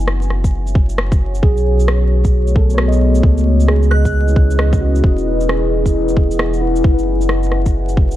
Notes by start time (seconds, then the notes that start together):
Already playing: F#1 E4 F#4 B4 C#5 E5 F#5 G#5
0.08 cross-stick
0.22 shaker
0.30 cross-stick
0.44 kick, shaker
0.67 shaker
0.75 kick
0.89 shaker
0.98 cross-stick
1.12 kick, shaker
1.35 shaker
1.43 B1 B3 G#4, kick
1.57 A3, shaker
1.80 shaker
1.88 cross-stick
1.97 D#5
2.25 kick, shaker
2.47 shaker
2.56 A4, kick
2.70 shaker
2.74 C#5, cross-stick
2.88 D#5
2.93 shaker
3.15 shaker
3.23 C#2 C#4, kick
3.30 E4 G#4
3.38 shaker
3.43 B4
3.60 shaker
3.68 G#4, cross-stick
3.83 shaker
3.91 F#6, cross-stick
4.05 kick, shaker
4.28 shaker
4.36 kick
4.51 shaker
4.59 cross-stick
4.73 kick, shaker
4.81 F#4
4.96 shaker
5.03 E1 E4, kick
5.18 shaker
5.33 F#5
5.41 shaker
5.48 G#4, cross-stick
5.57 G#5
5.86 kick, shaker
6.08 shaker
6.17 kick
6.31 shaker
6.39 cross-stick
6.54 shaker
6.61 E4
6.76 shaker
6.81 F#1 F#4 G#4, kick
6.94 B4
6.99 C#5 E5, shaker
7.21 shaker
7.29 cross-stick
7.43 F#5, shaker
7.52 cross-stick
7.66 kick, shaker
7.89 shaker
7.97 kick
8.11 shaker